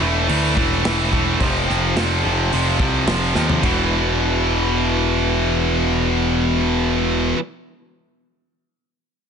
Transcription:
0.00 E1 A2 E3 A3
0.28 D2 A2 E3 A3, open hi-hat
0.55 E1 A2 E3 A3, kick
0.84 E1 A2 E3 A3, snare, open hi-hat
1.12 E1 A2 E3 A3, kick
1.39 F1 F2 C3 F3, kick, open hi-hat
1.67 F1 F2 C3 F3, snare
1.96 F1 F2 C3 F3, snare, open hi-hat
2.23 F1 F2 C3 F3
2.53 F1 F2 C3 F3, open hi-hat
2.79 C2 F2 C3 F3, kick
3.07 F1 F2 C3 F3, snare, open hi-hat
3.34 D#2 F2 C3 F3, snare
3.50 floor tom
3.62 E1 E2 B2, kick, crash
3.67 E3

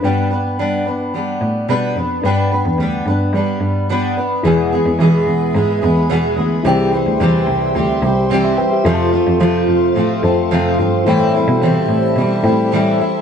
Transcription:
0.01 G2 G3 B3 D4 B4
0.05 B4 G5
0.31 B3 D4 B4
0.59 G3 B3 D4 B4
0.86 B3 D4 B4
1.14 G3 B3 D4 B4
1.41 A2
1.68 B2 G3 B3 D4 B4
1.96 F2 B3 D4 B4
2.22 G2 G3 B3 D4 B4
2.26 G5
2.52 B3 D4 B4
2.65 E2
2.79 D2 G3 B3 D4 B4
3.06 G2 B3 D4 B4
3.33 G3 B3 D4 B4
3.60 G2
3.89 G3 B3 D4 B4
4.17 B3 D4 B4
4.43 E2 B2 E3 G#3 B3 E4 G#4 B4 E5 B5
4.47 G#5
4.72 E3 G#3 B3 G#4
4.86 E2
4.99 E2 B2 E3 G#3 B3 G#4
5.27 E2
5.55 G#2 E3 G#3 B3 G#4
5.82 E2 E3 G#3 B3 G#4
6.09 E2 B2 E3 G#3 B3 G#4
6.37 D2 E3 G#3 B3 G#4
6.63 C2 C3 E3 G3 C4 E4 G4 C5 C6
6.67 G5
6.92 G3 C4 G4
7.06 D2
7.20 E2 C3 E3 G3 C4 G4
7.47 C2
7.74 D2 E3 G3 C4 G4
8.03 C2 G3 C4 G4
8.30 C3 E3 G3 C4 G4
8.44 E5 C6
8.57 G3 C4 G4 B4 G5
8.72 G4 E5
8.83 F2 C3 F3 A3 C4 F4 A4 C5 F5 G#5
8.94 A5
9.12 F3 A3 C4 F4
9.27 F2
9.40 F2 C3 F3 A3 C4 F4
9.68 F2
9.95 A2 F3 A3 C4 F4
10.22 F2 F3 A3 C4 F4 A4 C5 A5
10.51 F2 C3 F3 A3 C4 F4
10.78 G2 F3 A3 C4 F4
11.05 A2 E3 G3 C4 E4 G4 A4 C5 E5 A5
11.09 G5
11.34 G3 C4 E4
11.48 B2
11.61 A2 C3 E3 G3 C4 E4
11.89 A2
12.16 B2 E3 G3 C4 E4
12.43 A2 G3 C4 E4 A4 C5 G5
12.72 A2 E3 G3 C4 E4
12.99 G3 C4 E4

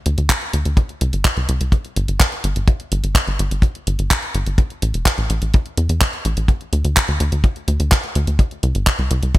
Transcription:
0.06 D2, closed hi-hat
0.18 D2, closed hi-hat
0.29 kick, clap, closed hi-hat
0.42 closed hi-hat
0.53 D2, closed hi-hat
0.65 D2, closed hi-hat
0.77 kick, closed hi-hat
0.89 closed hi-hat
1.01 C2, closed hi-hat
1.13 G1, closed hi-hat
1.25 kick, clap, closed hi-hat
1.37 C2, closed hi-hat
1.49 C2, closed hi-hat
1.61 C2, closed hi-hat
1.72 kick, closed hi-hat
1.85 closed hi-hat
1.96 G1, closed hi-hat
2.08 G1, closed hi-hat
2.20 kick, clap, closed hi-hat
2.32 closed hi-hat
2.44 G1, closed hi-hat
2.56 G1, closed hi-hat
2.68 kick, closed hi-hat
2.80 closed hi-hat
2.92 G1, closed hi-hat
3.04 G1, closed hi-hat
3.15 kick, clap, closed hi-hat
3.27 G1, closed hi-hat
3.39 G1, closed hi-hat
3.51 G1, closed hi-hat
3.62 kick, closed hi-hat
3.75 closed hi-hat
3.87 G1, closed hi-hat
3.99 G1, closed hi-hat
4.11 kick, clap, closed hi-hat
4.23 closed hi-hat
4.35 G1, closed hi-hat
4.46 G1, closed hi-hat
4.58 kick, closed hi-hat
4.70 closed hi-hat
4.82 A1, closed hi-hat
4.94 E1, closed hi-hat
5.06 kick, clap, closed hi-hat
5.18 A1, closed hi-hat
5.30 A1, closed hi-hat
5.42 A1, closed hi-hat
5.54 kick, closed hi-hat
5.66 closed hi-hat
5.77 E2, closed hi-hat
5.89 E2, closed hi-hat
6.01 kick, clap, closed hi-hat
6.13 closed hi-hat
6.25 A1, closed hi-hat
6.37 A1, closed hi-hat
6.48 kick, closed hi-hat
6.61 closed hi-hat
6.73 D2, closed hi-hat
6.84 D2, closed hi-hat
6.97 kick, clap, closed hi-hat
7.08 D2, closed hi-hat
7.20 D2, closed hi-hat
7.32 D2, closed hi-hat
7.44 kick, closed hi-hat
7.56 closed hi-hat
7.68 D2, closed hi-hat
7.80 D2, closed hi-hat
7.92 kick, clap, closed hi-hat
8.04 closed hi-hat
8.15 D2, closed hi-hat
8.27 D2, closed hi-hat
8.39 kick, closed hi-hat
8.51 closed hi-hat
8.63 C2, closed hi-hat
8.75 G1, closed hi-hat
8.87 kick, clap, closed hi-hat
8.99 C2, closed hi-hat
9.11 C2, closed hi-hat
9.23 C2, closed hi-hat
9.35 kick, closed hi-hat

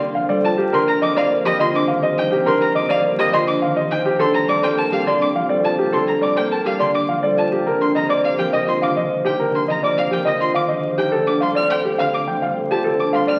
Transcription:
Already playing: C2 D3 F3 G3 A3 A#3
0.01 D4
0.15 F3 F5
0.29 G3 A4 D5
0.44 F4 A5
0.58 A#3 G4
0.72 C2 D3 D4 A#4 C6
0.87 G4 A#5
1.01 F3 D#5 D6
1.16 A#3 G4 D5 F5
1.31 A#4
1.45 F3 G4 D#5
1.59 D3 F4 D#5 C6
1.74 D4 D6
1.88 D#3 F5
2.02 F3 G4 D#5
2.18 D#4 G5
2.31 A#3 G4
2.46 D3 D4 A#4 C6
2.61 G4 A#5
2.75 F3 D#5 D6
2.89 A#3 G4 D5 F5
3.04 A#4
3.18 F3 G4 D#5
3.33 D3 F4 D#5 C6
3.47 D4 D6
3.62 D#3 F5
3.76 F3 G4 D#5
3.90 D#4 G5
4.05 A#3 G4
4.19 C2 D3 D4 A4 C6
4.34 A4 A#5
4.48 G3 D5 D6
4.62 A#3 A4 C5 G5
4.77 A#4 A5
4.91 G3 G4 F5
5.06 D3 G4 D5 C6
5.20 D4 D6
5.35 F3 F5
5.49 G3 A4 D5
5.63 F4 A5
5.78 A#3 G4
5.92 D3 D4 A4 C6
6.07 A4 A#5
6.21 G3 D5 D6
6.36 A#3 A4 C5 G5
6.50 A#4 A5
6.65 G3 G4 F5
6.79 D3 G4 D5 C6
6.94 D4 D6
7.09 F3 F5
7.23 G3 A4 D5
7.37 F4 A5
7.52 A#3 G4
7.66 C2 D3 A#4
7.80 D4 C6
7.95 F3 G4 D#5 A#5
8.09 A#3 D5 D6
8.24 G4 F5
8.38 F3 G4 A#4 G5
8.53 D3 D#5
8.67 F4 C6
8.81 D#3 D4 F5 D6
8.97 F3 D#5
9.10 G4
9.25 A#3 D#4 G4 G5
9.39 D3 A#4
9.53 D4 C6
9.68 F3 G4 D#5 A#5
9.83 A#3 D5 D6
9.97 G4 F5
10.11 F3 G4 A#4 G5
10.25 D3 D#5
10.41 F4 C6
10.54 D#3 D4 F5 D6
10.68 F3 D#5
10.84 G4
10.98 A#3 D#4 G4 G5
11.12 D2 D3 A4
11.27 D4 D6
11.41 G3 A4 F5 C6
11.55 C4 D5 F6
11.70 A4 G5
11.85 G3 G4 C5
11.98 D3 F5
12.13 G4 D6
12.27 F3 D4 G5
12.42 G3 F5
12.57 A4
12.71 C4 F4 G4 A5
12.84 D3 A4
12.99 D4 D6
13.13 G3 A4 F5 C6
13.27 C4 D5 F6

